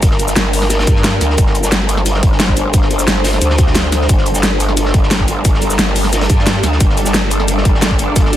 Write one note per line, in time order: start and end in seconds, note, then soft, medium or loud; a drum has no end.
0.00 0.35 G1 loud
0.00 8.37 G3 medium
0.00 8.37 D4 medium
0.00 8.37 A4 medium
0.00 1.37 A#4 loud
0.00 kick loud
0.00 closed hi-hat loud
0.00 closed hi-hat medium
0.00 shaker soft
0.11 snare medium
0.19 closed hi-hat medium
0.19 shaker soft
0.28 snare soft
0.28 shaker medium
0.36 0.86 G1 medium
0.36 snare loud
0.36 closed hi-hat loud
0.36 closed hi-hat medium
0.36 shaker soft
0.53 closed hi-hat medium
0.53 open hi-hat medium
0.53 shaker soft
0.62 snare soft
0.70 snare loud
0.70 closed hi-hat medium
0.70 shaker soft
0.79 snare loud
0.79 closed hi-hat medium
0.87 1.20 G2 loud
0.87 kick loud
0.87 snare soft
0.87 closed hi-hat medium
0.87 shaker soft
0.96 snare medium
1.04 snare loud
1.04 closed hi-hat loud
1.04 closed hi-hat medium
1.04 shaker medium
1.13 snare soft
1.21 1.37 D2 loud
1.21 snare medium
1.21 closed hi-hat medium
1.21 shaker soft
1.30 snare soft
1.38 2.22 G1 loud
1.38 4.08 C5 medium
1.38 kick loud
1.38 closed hi-hat medium
1.38 shaker soft
1.46 snare soft
1.55 closed hi-hat medium
1.55 shaker soft
1.63 snare medium
1.63 shaker medium
1.72 snare loud
1.72 closed hi-hat loud
1.72 closed hi-hat medium
1.72 shaker soft
1.89 closed hi-hat medium
1.89 shaker soft
1.97 snare soft
2.06 closed hi-hat medium
2.06 shaker soft
2.14 snare soft
2.23 3.06 G1 loud
2.23 kick loud
2.23 closed hi-hat medium
2.32 snare soft
2.39 snare loud
2.39 closed hi-hat medium
2.39 shaker medium
2.48 kick medium
2.48 snare soft
2.56 closed hi-hat medium
2.56 shaker soft
2.73 kick loud
2.73 closed hi-hat medium
2.73 shaker soft
2.82 snare medium
2.91 closed hi-hat medium
2.91 shaker soft
2.99 snare soft
2.99 shaker medium
3.08 3.40 G1 loud
3.08 snare loud
3.08 closed hi-hat loud
3.08 closed hi-hat medium
3.08 shaker soft
3.24 snare loud
3.24 closed hi-hat medium
3.24 open hi-hat medium
3.24 shaker soft
3.33 snare soft
3.41 4.08 D2 loud
3.41 closed hi-hat medium
3.41 shaker soft
3.50 snare medium
3.58 kick loud
3.58 snare soft
3.58 closed hi-hat medium
3.58 shaker soft
3.67 snare medium
3.75 snare loud
3.75 closed hi-hat medium
3.75 shaker medium
3.84 snare soft
3.92 snare medium
3.92 closed hi-hat medium
3.92 shaker soft
4.01 snare soft
4.09 4.93 G1 loud
4.09 6.79 A#4 medium
4.09 kick loud
4.09 closed hi-hat medium
4.09 shaker soft
4.17 snare medium
4.26 closed hi-hat medium
4.26 shaker soft
4.34 snare soft
4.34 shaker medium
4.43 snare loud
4.43 closed hi-hat medium
4.43 shaker medium
4.60 closed hi-hat medium
4.60 shaker soft
4.69 snare soft
4.77 closed hi-hat medium
4.77 shaker soft
4.85 snare soft
4.94 5.77 G1 loud
4.94 kick loud
4.94 closed hi-hat medium
5.03 snare soft
5.11 snare loud
5.11 closed hi-hat medium
5.11 shaker medium
5.19 kick medium
5.19 snare soft
5.28 closed hi-hat medium
5.28 shaker soft
5.45 kick loud
5.45 closed hi-hat medium
5.45 shaker medium
5.54 snare medium
5.62 closed hi-hat medium
5.62 shaker soft
5.70 snare soft
5.70 shaker medium
5.79 6.28 G1 loud
5.79 snare loud
5.79 closed hi-hat loud
5.79 shaker medium
5.96 closed hi-hat medium
5.96 open hi-hat medium
5.96 shaker soft
6.04 snare soft
6.13 snare loud
6.13 closed hi-hat medium
6.13 shaker medium
6.21 snare loud
6.21 closed hi-hat medium
6.29 6.62 G2 medium
6.29 kick loud
6.29 snare soft
6.29 closed hi-hat medium
6.29 shaker soft
6.39 snare medium
6.47 snare loud
6.47 closed hi-hat loud
6.47 shaker medium
6.55 snare soft
6.63 6.79 D2 loud
6.63 snare medium
6.63 closed hi-hat medium
6.63 shaker soft
6.72 snare soft
6.80 7.64 G1 loud
6.80 8.37 D5 medium
6.80 kick loud
6.80 closed hi-hat loud
6.80 closed hi-hat medium
6.80 shaker medium
6.89 snare soft
6.97 closed hi-hat medium
6.97 shaker soft
7.05 snare medium
7.05 shaker medium
7.14 snare loud
7.14 closed hi-hat medium
7.14 closed hi-hat loud
7.14 shaker medium
7.30 closed hi-hat medium
7.30 shaker soft
7.40 snare soft
7.48 closed hi-hat loud
7.48 closed hi-hat medium
7.48 shaker medium
7.57 snare soft
7.65 8.37 G1 medium
7.65 kick loud
7.65 closed hi-hat medium
7.74 snare soft
7.82 snare loud
7.82 closed hi-hat loud
7.82 shaker medium
7.90 kick medium
7.90 snare soft
7.99 closed hi-hat medium
7.99 shaker soft
8.16 kick loud
8.16 closed hi-hat loud
8.16 closed hi-hat medium
8.16 shaker medium
8.25 snare soft
8.33 closed hi-hat medium
8.33 shaker soft